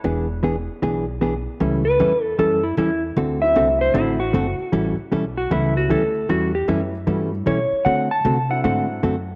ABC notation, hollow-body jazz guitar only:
X:1
M:4/4
L:1/16
Q:"Swing" 1/4=154
K:A
V:1 name="Hollow-body jazz guitar"
[E,B,DG]2 z2 [E,B,DG] z3 [E,B,DG]2 z2 [E,B,DG] z3 | [E,=G,CEA]2 z2 [E,G,CEA] z3 [E,G,CEA]2 z2 [E,G,CEA] z3 | [D,A,=CFA]2 z2 [D,A,CFA] z3 [D,A,CFA]2 z2 [D,A,CFA] z3 | [E,=G,CEA]2 z2 [E,G,CEA] z3 [E,G,CEA]2 z2 [E,G,CEA] z3 |
[E,=G,CEA]2 z2 [E,G,CEA] z3 [E,G,CEA]2 z2 [E,G,CEA] z3 | [D,A,=CFA]2 z2 [D,A,CFA] z3 [D,A,CFA]2 z2 [D,A,CFA] z3 |]